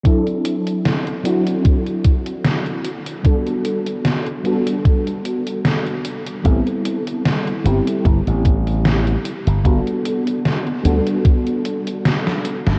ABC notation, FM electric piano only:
X:1
M:4/4
L:1/8
Q:"Swing 16ths" 1/4=75
K:G
V:1 name="FM electric piano"
[F,CDEA]3 [F,CDEF]4 z | [G,B,DFA]3 [G,B,DFA]4 z | [G,B,CEA]3 [G,B,CEG]4 z | [G,B,DFA]3 [G,B,DFA]4- [G,B,DFA] |]